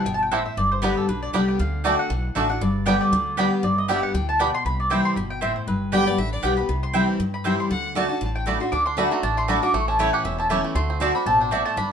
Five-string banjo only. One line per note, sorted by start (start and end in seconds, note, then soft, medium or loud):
0.33 0.38 G3 medium
0.33 0.39 C4 medium
0.33 0.39 E4 medium
0.84 0.90 G3 medium
0.84 0.90 B3 medium
0.84 0.90 D4 medium
1.34 1.40 G3 medium
1.34 1.41 B3 medium
1.34 1.41 D4 medium
1.86 1.92 A3 medium
1.86 1.88 D4 medium
2.37 2.43 A3 medium
2.37 2.39 D4 medium
2.88 2.94 G3 medium
2.88 2.94 B3 medium
2.88 2.94 D4 medium
3.39 3.45 G3 medium
3.39 3.45 B3 medium
3.39 3.45 D4 medium
3.90 3.96 G3 medium
3.90 3.96 B3 medium
3.90 3.96 D4 medium
4.41 4.47 G3 medium
4.41 4.47 B3 medium
4.41 4.47 D4 medium
8.73 8.86 D4 medium
8.87 8.97 D4 medium
8.98 9.22 D4 medium
9.12 9.37 A3 medium
9.23 9.47 D4 medium
9.37 9.74 A3 medium
9.49 9.62 D4 medium
9.63 9.74 D4 medium
9.74 10.11 A3 medium
9.88 10.23 C#4 medium
10.00 10.36 E4 medium
10.14 10.48 G4 medium
10.25 10.62 C#4 medium
10.40 10.74 E4 medium
10.51 10.76 G4 medium
10.64 10.74 A3 medium
10.76 11.12 A3 medium
10.90 11.25 C4 medium
11.01 11.15 D4 medium
11.16 11.41 D4 medium
11.27 11.64 C4 medium
11.41 11.52 D4 medium
11.53 11.77 D4 medium
11.66 11.78 A3 medium
11.78 11.92 D4 medium